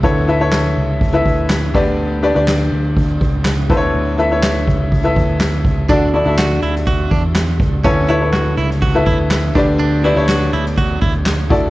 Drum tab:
CC |--------------x-|--------------x-|----------------|----------------|
RD |x-xxxxxxxxxxx--x|x-xxxxxxx-xxxx-x|x-xxxxxxxxxxx-xx|x-xxxxxxx-xxx-xx|
CP |----x-------x---|----x-------x---|----x-------x---|----x-------x---|
SD |----o-------o---|----o-------o---|----o-------o---|----o--o----o---|
BD |o-------o-o---o-|--------o-o---o-|------o-o-o---o-|o-------o-o---o-|

CC |----------------|----------------|
RD |x-xxx-xxx-xxxxxx|x-xxxxxxxxxxxxxx|
CP |----x-------x---|----x-------x---|
SD |----o--o----o---|----o--o----o---|
BD |o-------o-o---o-|--------o-o---o-|